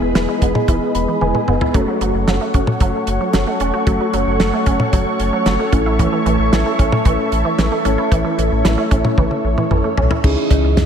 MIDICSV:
0, 0, Header, 1, 6, 480
1, 0, Start_track
1, 0, Tempo, 530973
1, 1577, Time_signature, 4, 2, 24, 8
1, 9814, End_track
2, 0, Start_track
2, 0, Title_t, "String machine"
2, 0, Program_c, 0, 50
2, 0, Note_on_c, 0, 68, 78
2, 0, Note_on_c, 0, 71, 73
2, 0, Note_on_c, 0, 75, 72
2, 0, Note_on_c, 0, 83, 88
2, 1540, Note_off_c, 0, 68, 0
2, 1540, Note_off_c, 0, 83, 0
2, 1541, Note_off_c, 0, 71, 0
2, 1559, Note_off_c, 0, 75, 0
2, 1577, Note_on_c, 0, 78, 72
2, 1578, Note_on_c, 0, 69, 80
2, 1578, Note_on_c, 0, 85, 84
2, 1579, Note_on_c, 0, 73, 72
2, 5141, Note_off_c, 0, 78, 0
2, 5175, Note_on_c, 0, 76, 76
2, 9220, Note_off_c, 0, 76, 0
2, 9221, Note_off_c, 0, 69, 0
2, 9222, Note_off_c, 0, 73, 0
2, 9222, Note_off_c, 0, 85, 0
2, 9254, Note_on_c, 0, 52, 86
2, 9255, Note_on_c, 0, 75, 72
2, 9256, Note_on_c, 0, 49, 77
2, 9256, Note_on_c, 0, 61, 76
2, 9814, Note_off_c, 0, 49, 0
2, 9814, Note_off_c, 0, 52, 0
2, 9814, Note_off_c, 0, 61, 0
2, 9814, Note_off_c, 0, 75, 0
2, 9814, End_track
3, 0, Start_track
3, 0, Title_t, "Synth keys"
3, 0, Program_c, 1, 88
3, 0, Note_on_c, 1, 56, 74
3, 0, Note_on_c, 1, 59, 67
3, 0, Note_on_c, 1, 64, 68
3, 0, Note_on_c, 1, 68, 79
3, 856, Note_on_c, 1, 83, 70
3, 1080, Note_off_c, 1, 83, 0
3, 1095, Note_on_c, 1, 80, 72
3, 1540, Note_off_c, 1, 56, 0
3, 1540, Note_off_c, 1, 59, 0
3, 1540, Note_off_c, 1, 64, 0
3, 1540, Note_off_c, 1, 68, 0
3, 1543, Note_off_c, 1, 80, 0
3, 1576, Note_on_c, 1, 57, 71
3, 1576, Note_on_c, 1, 61, 65
3, 1576, Note_on_c, 1, 66, 68
3, 1576, Note_on_c, 1, 69, 79
3, 3460, Note_off_c, 1, 57, 0
3, 3460, Note_off_c, 1, 61, 0
3, 3460, Note_off_c, 1, 69, 0
3, 3461, Note_off_c, 1, 66, 0
3, 3493, Note_on_c, 1, 69, 81
3, 3494, Note_on_c, 1, 57, 72
3, 3494, Note_on_c, 1, 66, 66
3, 3495, Note_on_c, 1, 61, 68
3, 5142, Note_off_c, 1, 57, 0
3, 5142, Note_off_c, 1, 61, 0
3, 5142, Note_off_c, 1, 66, 0
3, 5142, Note_off_c, 1, 69, 0
3, 5175, Note_on_c, 1, 61, 70
3, 5175, Note_on_c, 1, 69, 84
3, 5176, Note_on_c, 1, 64, 71
3, 5177, Note_on_c, 1, 57, 76
3, 7060, Note_off_c, 1, 61, 0
3, 7060, Note_off_c, 1, 64, 0
3, 7060, Note_off_c, 1, 69, 0
3, 7061, Note_off_c, 1, 57, 0
3, 7098, Note_on_c, 1, 57, 78
3, 7098, Note_on_c, 1, 61, 70
3, 7098, Note_on_c, 1, 64, 73
3, 7098, Note_on_c, 1, 69, 83
3, 8981, Note_off_c, 1, 57, 0
3, 8981, Note_off_c, 1, 61, 0
3, 8981, Note_off_c, 1, 64, 0
3, 8981, Note_off_c, 1, 69, 0
3, 9258, Note_on_c, 1, 63, 68
3, 9258, Note_on_c, 1, 68, 83
3, 9259, Note_on_c, 1, 61, 75
3, 9259, Note_on_c, 1, 64, 68
3, 9814, Note_off_c, 1, 61, 0
3, 9814, Note_off_c, 1, 63, 0
3, 9814, Note_off_c, 1, 64, 0
3, 9814, Note_off_c, 1, 68, 0
3, 9814, End_track
4, 0, Start_track
4, 0, Title_t, "Synth arpeggio sound"
4, 0, Program_c, 2, 84
4, 138, Note_on_c, 2, 52, 83
4, 216, Note_off_c, 2, 52, 0
4, 257, Note_on_c, 2, 56, 73
4, 334, Note_off_c, 2, 56, 0
4, 379, Note_on_c, 2, 59, 82
4, 456, Note_off_c, 2, 59, 0
4, 617, Note_on_c, 2, 52, 84
4, 695, Note_off_c, 2, 52, 0
4, 979, Note_on_c, 2, 52, 72
4, 1056, Note_off_c, 2, 52, 0
4, 1100, Note_on_c, 2, 52, 81
4, 1177, Note_off_c, 2, 52, 0
4, 1220, Note_on_c, 2, 56, 76
4, 1297, Note_off_c, 2, 56, 0
4, 1339, Note_on_c, 2, 59, 82
4, 1416, Note_off_c, 2, 59, 0
4, 1458, Note_on_c, 2, 64, 81
4, 1536, Note_off_c, 2, 64, 0
4, 1578, Note_on_c, 2, 54, 99
4, 1655, Note_off_c, 2, 54, 0
4, 1700, Note_on_c, 2, 54, 73
4, 1777, Note_off_c, 2, 54, 0
4, 1820, Note_on_c, 2, 54, 79
4, 1897, Note_off_c, 2, 54, 0
4, 2058, Note_on_c, 2, 54, 83
4, 2135, Note_off_c, 2, 54, 0
4, 2179, Note_on_c, 2, 57, 74
4, 2256, Note_off_c, 2, 57, 0
4, 2301, Note_on_c, 2, 61, 81
4, 2377, Note_off_c, 2, 61, 0
4, 2539, Note_on_c, 2, 54, 86
4, 2616, Note_off_c, 2, 54, 0
4, 2900, Note_on_c, 2, 54, 70
4, 2977, Note_off_c, 2, 54, 0
4, 3019, Note_on_c, 2, 54, 84
4, 3096, Note_off_c, 2, 54, 0
4, 3139, Note_on_c, 2, 57, 78
4, 3216, Note_off_c, 2, 57, 0
4, 3260, Note_on_c, 2, 61, 86
4, 3336, Note_off_c, 2, 61, 0
4, 3378, Note_on_c, 2, 66, 80
4, 3455, Note_off_c, 2, 66, 0
4, 3499, Note_on_c, 2, 54, 94
4, 3576, Note_off_c, 2, 54, 0
4, 3620, Note_on_c, 2, 54, 70
4, 3697, Note_off_c, 2, 54, 0
4, 3738, Note_on_c, 2, 54, 81
4, 3816, Note_off_c, 2, 54, 0
4, 3978, Note_on_c, 2, 54, 84
4, 4055, Note_off_c, 2, 54, 0
4, 4098, Note_on_c, 2, 57, 76
4, 4175, Note_off_c, 2, 57, 0
4, 4216, Note_on_c, 2, 61, 83
4, 4294, Note_off_c, 2, 61, 0
4, 4456, Note_on_c, 2, 54, 84
4, 4534, Note_off_c, 2, 54, 0
4, 4818, Note_on_c, 2, 54, 72
4, 4895, Note_off_c, 2, 54, 0
4, 4937, Note_on_c, 2, 54, 85
4, 5015, Note_off_c, 2, 54, 0
4, 5058, Note_on_c, 2, 57, 74
4, 5135, Note_off_c, 2, 57, 0
4, 5177, Note_on_c, 2, 61, 85
4, 5255, Note_off_c, 2, 61, 0
4, 5298, Note_on_c, 2, 64, 82
4, 5375, Note_off_c, 2, 64, 0
4, 5418, Note_on_c, 2, 52, 94
4, 5495, Note_off_c, 2, 52, 0
4, 5539, Note_on_c, 2, 52, 71
4, 5616, Note_off_c, 2, 52, 0
4, 5658, Note_on_c, 2, 52, 81
4, 5735, Note_off_c, 2, 52, 0
4, 5898, Note_on_c, 2, 52, 84
4, 5976, Note_off_c, 2, 52, 0
4, 6019, Note_on_c, 2, 57, 75
4, 6096, Note_off_c, 2, 57, 0
4, 6136, Note_on_c, 2, 61, 83
4, 6214, Note_off_c, 2, 61, 0
4, 6376, Note_on_c, 2, 52, 85
4, 6454, Note_off_c, 2, 52, 0
4, 6735, Note_on_c, 2, 52, 75
4, 6813, Note_off_c, 2, 52, 0
4, 6857, Note_on_c, 2, 52, 84
4, 6935, Note_off_c, 2, 52, 0
4, 6977, Note_on_c, 2, 57, 73
4, 7055, Note_off_c, 2, 57, 0
4, 7096, Note_on_c, 2, 61, 86
4, 7174, Note_off_c, 2, 61, 0
4, 7215, Note_on_c, 2, 64, 82
4, 7293, Note_off_c, 2, 64, 0
4, 7335, Note_on_c, 2, 52, 93
4, 7413, Note_off_c, 2, 52, 0
4, 7455, Note_on_c, 2, 52, 74
4, 7533, Note_off_c, 2, 52, 0
4, 7576, Note_on_c, 2, 52, 80
4, 7654, Note_off_c, 2, 52, 0
4, 7816, Note_on_c, 2, 52, 82
4, 7894, Note_off_c, 2, 52, 0
4, 7936, Note_on_c, 2, 57, 76
4, 8014, Note_off_c, 2, 57, 0
4, 8055, Note_on_c, 2, 61, 82
4, 8134, Note_off_c, 2, 61, 0
4, 8297, Note_on_c, 2, 52, 83
4, 8374, Note_off_c, 2, 52, 0
4, 8657, Note_on_c, 2, 52, 72
4, 8735, Note_off_c, 2, 52, 0
4, 8777, Note_on_c, 2, 52, 84
4, 8855, Note_off_c, 2, 52, 0
4, 8897, Note_on_c, 2, 57, 74
4, 8975, Note_off_c, 2, 57, 0
4, 9019, Note_on_c, 2, 61, 84
4, 9096, Note_off_c, 2, 61, 0
4, 9138, Note_on_c, 2, 64, 77
4, 9215, Note_off_c, 2, 64, 0
4, 9814, End_track
5, 0, Start_track
5, 0, Title_t, "Analog synth bass"
5, 0, Program_c, 3, 38
5, 16, Note_on_c, 3, 28, 94
5, 120, Note_off_c, 3, 28, 0
5, 137, Note_on_c, 3, 28, 101
5, 240, Note_off_c, 3, 28, 0
5, 378, Note_on_c, 3, 28, 99
5, 481, Note_off_c, 3, 28, 0
5, 616, Note_on_c, 3, 28, 105
5, 720, Note_off_c, 3, 28, 0
5, 858, Note_on_c, 3, 28, 99
5, 961, Note_off_c, 3, 28, 0
5, 1097, Note_on_c, 3, 28, 104
5, 1200, Note_off_c, 3, 28, 0
5, 1338, Note_on_c, 3, 28, 92
5, 1441, Note_off_c, 3, 28, 0
5, 1576, Note_on_c, 3, 30, 104
5, 1680, Note_off_c, 3, 30, 0
5, 1816, Note_on_c, 3, 30, 100
5, 1920, Note_off_c, 3, 30, 0
5, 1937, Note_on_c, 3, 30, 93
5, 2040, Note_off_c, 3, 30, 0
5, 2057, Note_on_c, 3, 30, 103
5, 2160, Note_off_c, 3, 30, 0
5, 2298, Note_on_c, 3, 30, 100
5, 2401, Note_off_c, 3, 30, 0
5, 2535, Note_on_c, 3, 30, 105
5, 2639, Note_off_c, 3, 30, 0
5, 2777, Note_on_c, 3, 30, 94
5, 2880, Note_off_c, 3, 30, 0
5, 3018, Note_on_c, 3, 30, 104
5, 3121, Note_off_c, 3, 30, 0
5, 3258, Note_on_c, 3, 28, 90
5, 3361, Note_off_c, 3, 28, 0
5, 3496, Note_on_c, 3, 30, 108
5, 3600, Note_off_c, 3, 30, 0
5, 3738, Note_on_c, 3, 30, 94
5, 3841, Note_off_c, 3, 30, 0
5, 3859, Note_on_c, 3, 30, 100
5, 3961, Note_off_c, 3, 30, 0
5, 3977, Note_on_c, 3, 30, 103
5, 4080, Note_off_c, 3, 30, 0
5, 4218, Note_on_c, 3, 30, 98
5, 4321, Note_off_c, 3, 30, 0
5, 4456, Note_on_c, 3, 30, 105
5, 4560, Note_off_c, 3, 30, 0
5, 4697, Note_on_c, 3, 30, 90
5, 4800, Note_off_c, 3, 30, 0
5, 4936, Note_on_c, 3, 30, 102
5, 5040, Note_off_c, 3, 30, 0
5, 5176, Note_on_c, 3, 33, 102
5, 5486, Note_off_c, 3, 33, 0
5, 5657, Note_on_c, 3, 33, 102
5, 5760, Note_off_c, 3, 33, 0
5, 5776, Note_on_c, 3, 33, 98
5, 5880, Note_off_c, 3, 33, 0
5, 5897, Note_on_c, 3, 33, 101
5, 6000, Note_off_c, 3, 33, 0
5, 6140, Note_on_c, 3, 33, 100
5, 6242, Note_off_c, 3, 33, 0
5, 6377, Note_on_c, 3, 33, 107
5, 6480, Note_off_c, 3, 33, 0
5, 6617, Note_on_c, 3, 33, 91
5, 6721, Note_off_c, 3, 33, 0
5, 6856, Note_on_c, 3, 33, 103
5, 6960, Note_off_c, 3, 33, 0
5, 7098, Note_on_c, 3, 32, 97
5, 7201, Note_off_c, 3, 32, 0
5, 7338, Note_on_c, 3, 33, 108
5, 7441, Note_off_c, 3, 33, 0
5, 7578, Note_on_c, 3, 33, 103
5, 7681, Note_off_c, 3, 33, 0
5, 7700, Note_on_c, 3, 33, 99
5, 7802, Note_off_c, 3, 33, 0
5, 7820, Note_on_c, 3, 33, 102
5, 7922, Note_off_c, 3, 33, 0
5, 8058, Note_on_c, 3, 33, 99
5, 8161, Note_off_c, 3, 33, 0
5, 8296, Note_on_c, 3, 33, 103
5, 8400, Note_off_c, 3, 33, 0
5, 8536, Note_on_c, 3, 33, 97
5, 8640, Note_off_c, 3, 33, 0
5, 8776, Note_on_c, 3, 33, 104
5, 8880, Note_off_c, 3, 33, 0
5, 9017, Note_on_c, 3, 35, 90
5, 9120, Note_off_c, 3, 35, 0
5, 9256, Note_on_c, 3, 37, 107
5, 9360, Note_off_c, 3, 37, 0
5, 9497, Note_on_c, 3, 37, 104
5, 9600, Note_off_c, 3, 37, 0
5, 9615, Note_on_c, 3, 37, 103
5, 9719, Note_off_c, 3, 37, 0
5, 9733, Note_on_c, 3, 37, 108
5, 9814, Note_off_c, 3, 37, 0
5, 9814, End_track
6, 0, Start_track
6, 0, Title_t, "Drums"
6, 138, Note_on_c, 9, 38, 113
6, 138, Note_on_c, 9, 42, 71
6, 228, Note_off_c, 9, 38, 0
6, 229, Note_off_c, 9, 42, 0
6, 377, Note_on_c, 9, 42, 74
6, 379, Note_on_c, 9, 36, 89
6, 468, Note_off_c, 9, 42, 0
6, 469, Note_off_c, 9, 36, 0
6, 499, Note_on_c, 9, 47, 90
6, 589, Note_off_c, 9, 47, 0
6, 616, Note_on_c, 9, 36, 98
6, 616, Note_on_c, 9, 42, 78
6, 706, Note_off_c, 9, 42, 0
6, 707, Note_off_c, 9, 36, 0
6, 857, Note_on_c, 9, 42, 74
6, 947, Note_off_c, 9, 42, 0
6, 1097, Note_on_c, 9, 48, 54
6, 1187, Note_off_c, 9, 48, 0
6, 1217, Note_on_c, 9, 47, 58
6, 1307, Note_off_c, 9, 47, 0
6, 1336, Note_on_c, 9, 45, 85
6, 1427, Note_off_c, 9, 45, 0
6, 1457, Note_on_c, 9, 43, 91
6, 1548, Note_off_c, 9, 43, 0
6, 1576, Note_on_c, 9, 42, 73
6, 1577, Note_on_c, 9, 36, 108
6, 1666, Note_off_c, 9, 42, 0
6, 1667, Note_off_c, 9, 36, 0
6, 1818, Note_on_c, 9, 42, 74
6, 1909, Note_off_c, 9, 42, 0
6, 2058, Note_on_c, 9, 38, 117
6, 2058, Note_on_c, 9, 42, 70
6, 2148, Note_off_c, 9, 38, 0
6, 2148, Note_off_c, 9, 42, 0
6, 2296, Note_on_c, 9, 42, 73
6, 2298, Note_on_c, 9, 36, 88
6, 2386, Note_off_c, 9, 42, 0
6, 2389, Note_off_c, 9, 36, 0
6, 2417, Note_on_c, 9, 47, 96
6, 2507, Note_off_c, 9, 47, 0
6, 2534, Note_on_c, 9, 42, 77
6, 2536, Note_on_c, 9, 36, 98
6, 2625, Note_off_c, 9, 42, 0
6, 2626, Note_off_c, 9, 36, 0
6, 2775, Note_on_c, 9, 42, 74
6, 2866, Note_off_c, 9, 42, 0
6, 3013, Note_on_c, 9, 42, 69
6, 3015, Note_on_c, 9, 38, 101
6, 3104, Note_off_c, 9, 42, 0
6, 3105, Note_off_c, 9, 38, 0
6, 3254, Note_on_c, 9, 42, 73
6, 3345, Note_off_c, 9, 42, 0
6, 3496, Note_on_c, 9, 36, 110
6, 3496, Note_on_c, 9, 42, 75
6, 3586, Note_off_c, 9, 42, 0
6, 3587, Note_off_c, 9, 36, 0
6, 3738, Note_on_c, 9, 42, 76
6, 3828, Note_off_c, 9, 42, 0
6, 3976, Note_on_c, 9, 38, 110
6, 3976, Note_on_c, 9, 42, 70
6, 4066, Note_off_c, 9, 38, 0
6, 4066, Note_off_c, 9, 42, 0
6, 4214, Note_on_c, 9, 42, 76
6, 4218, Note_on_c, 9, 36, 90
6, 4305, Note_off_c, 9, 42, 0
6, 4308, Note_off_c, 9, 36, 0
6, 4336, Note_on_c, 9, 47, 93
6, 4427, Note_off_c, 9, 47, 0
6, 4455, Note_on_c, 9, 42, 80
6, 4456, Note_on_c, 9, 36, 100
6, 4545, Note_off_c, 9, 42, 0
6, 4546, Note_off_c, 9, 36, 0
6, 4696, Note_on_c, 9, 42, 77
6, 4787, Note_off_c, 9, 42, 0
6, 4935, Note_on_c, 9, 42, 71
6, 4936, Note_on_c, 9, 38, 100
6, 5025, Note_off_c, 9, 42, 0
6, 5026, Note_off_c, 9, 38, 0
6, 5175, Note_on_c, 9, 42, 73
6, 5176, Note_on_c, 9, 36, 94
6, 5265, Note_off_c, 9, 42, 0
6, 5266, Note_off_c, 9, 36, 0
6, 5417, Note_on_c, 9, 36, 107
6, 5418, Note_on_c, 9, 42, 75
6, 5508, Note_off_c, 9, 36, 0
6, 5509, Note_off_c, 9, 42, 0
6, 5661, Note_on_c, 9, 42, 74
6, 5752, Note_off_c, 9, 42, 0
6, 5901, Note_on_c, 9, 38, 115
6, 5901, Note_on_c, 9, 42, 72
6, 5991, Note_off_c, 9, 38, 0
6, 5992, Note_off_c, 9, 42, 0
6, 6139, Note_on_c, 9, 36, 91
6, 6140, Note_on_c, 9, 42, 75
6, 6230, Note_off_c, 9, 36, 0
6, 6230, Note_off_c, 9, 42, 0
6, 6260, Note_on_c, 9, 47, 98
6, 6350, Note_off_c, 9, 47, 0
6, 6376, Note_on_c, 9, 42, 80
6, 6377, Note_on_c, 9, 36, 105
6, 6466, Note_off_c, 9, 42, 0
6, 6467, Note_off_c, 9, 36, 0
6, 6618, Note_on_c, 9, 42, 73
6, 6708, Note_off_c, 9, 42, 0
6, 6856, Note_on_c, 9, 42, 71
6, 6858, Note_on_c, 9, 38, 103
6, 6947, Note_off_c, 9, 42, 0
6, 6948, Note_off_c, 9, 38, 0
6, 7097, Note_on_c, 9, 42, 72
6, 7187, Note_off_c, 9, 42, 0
6, 7337, Note_on_c, 9, 36, 107
6, 7339, Note_on_c, 9, 42, 73
6, 7428, Note_off_c, 9, 36, 0
6, 7429, Note_off_c, 9, 42, 0
6, 7581, Note_on_c, 9, 42, 73
6, 7672, Note_off_c, 9, 42, 0
6, 7819, Note_on_c, 9, 38, 118
6, 7819, Note_on_c, 9, 42, 69
6, 7909, Note_off_c, 9, 38, 0
6, 7910, Note_off_c, 9, 42, 0
6, 8057, Note_on_c, 9, 42, 76
6, 8058, Note_on_c, 9, 36, 90
6, 8147, Note_off_c, 9, 42, 0
6, 8148, Note_off_c, 9, 36, 0
6, 8178, Note_on_c, 9, 47, 95
6, 8268, Note_off_c, 9, 47, 0
6, 8296, Note_on_c, 9, 36, 103
6, 8297, Note_on_c, 9, 48, 55
6, 8386, Note_off_c, 9, 36, 0
6, 8388, Note_off_c, 9, 48, 0
6, 8416, Note_on_c, 9, 48, 55
6, 8507, Note_off_c, 9, 48, 0
6, 8658, Note_on_c, 9, 47, 64
6, 8748, Note_off_c, 9, 47, 0
6, 8777, Note_on_c, 9, 45, 85
6, 8867, Note_off_c, 9, 45, 0
6, 9017, Note_on_c, 9, 43, 95
6, 9108, Note_off_c, 9, 43, 0
6, 9136, Note_on_c, 9, 43, 91
6, 9227, Note_off_c, 9, 43, 0
6, 9257, Note_on_c, 9, 36, 111
6, 9257, Note_on_c, 9, 49, 92
6, 9347, Note_off_c, 9, 36, 0
6, 9347, Note_off_c, 9, 49, 0
6, 9496, Note_on_c, 9, 56, 75
6, 9497, Note_on_c, 9, 36, 101
6, 9499, Note_on_c, 9, 42, 74
6, 9587, Note_off_c, 9, 36, 0
6, 9587, Note_off_c, 9, 56, 0
6, 9589, Note_off_c, 9, 42, 0
6, 9737, Note_on_c, 9, 38, 118
6, 9737, Note_on_c, 9, 45, 87
6, 9738, Note_on_c, 9, 42, 72
6, 9814, Note_off_c, 9, 38, 0
6, 9814, Note_off_c, 9, 42, 0
6, 9814, Note_off_c, 9, 45, 0
6, 9814, End_track
0, 0, End_of_file